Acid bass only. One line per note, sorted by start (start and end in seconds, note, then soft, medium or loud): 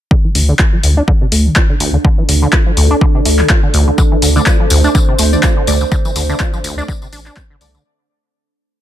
0.11 0.15 D3 medium
0.24 0.30 E3 medium
0.35 0.43 D3 medium
0.49 0.55 D3 loud
0.59 0.71 F4 medium
0.73 0.79 F3 medium
0.84 0.95 D2 loud
0.97 1.03 D4 loud
1.08 1.12 D3 loud
1.21 1.27 C3 medium
1.32 1.47 A3 medium
1.46 1.54 D3 medium
1.56 1.67 F4 medium
1.70 1.76 D3 medium
1.80 1.91 D2 loud
1.94 1.97 D3 medium
2.04 2.09 D3 loud
2.18 2.24 E3 medium
2.29 2.36 D3 medium
2.42 2.48 D3 loud
2.53 2.64 F4 medium
2.66 2.72 F3 medium
2.77 2.88 D2 loud
2.91 2.97 D4 loud
3.01 3.06 D3 loud
3.15 3.21 C3 medium
3.25 3.41 A3 medium
3.39 3.48 D3 medium
3.50 3.61 F4 medium
3.63 3.69 D3 medium
3.74 3.85 D2 loud
3.87 3.91 D3 medium
3.98 4.03 D3 medium
4.12 4.17 E3 medium
4.22 4.30 D3 medium
4.36 4.42 D3 loud
4.46 4.58 F4 medium
4.60 4.66 F3 medium
4.71 4.82 D2 loud
4.84 4.90 D4 loud
4.95 4.99 D3 loud
5.08 5.14 C3 medium
5.19 5.34 A3 medium
5.33 5.41 D3 medium
5.43 5.54 F4 medium
5.57 5.63 D3 medium
5.67 5.79 D2 loud
5.81 5.85 D3 medium
5.92 5.96 D3 loud
6.05 6.11 E3 medium
6.16 6.23 D3 medium
6.29 6.35 D3 loud
6.40 6.51 F4 medium
6.54 6.59 F3 medium
6.64 6.75 D2 loud
6.78 6.84 D4 loud
6.88 6.93 D3 loud
7.02 7.08 C3 medium
7.13 7.20 D4 loud
7.26 7.38 D4 medium
7.37 7.44 C4 medium
7.50 7.56 D3 loud
7.61 7.68 D3 medium
7.75 7.83 D3 medium